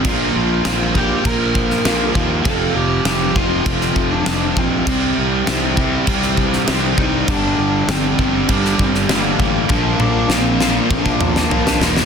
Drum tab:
CC |x---x---x---x---|x---x---x---x---|x---x---x---x---|x---x---x---x---|
SD |----o------oo---|----o----o--o---|----o----o-oo---|----o----o-oo---|
T1 |----------------|----------------|----------------|----------------|
T2 |----------------|----------------|----------------|----------------|
FT |----------------|----------------|----------------|----------------|
BD |o-----o-o-o---o-|o-----o-o-o---o-|o-----o-o-o---o-|o-----o-o-o---o-|

CC |----------------|
SD |----o-o----o-ooo|
T1 |o-o-------------|
T2 |----------o-----|
FT |------------o---|
BD |o-------oo------|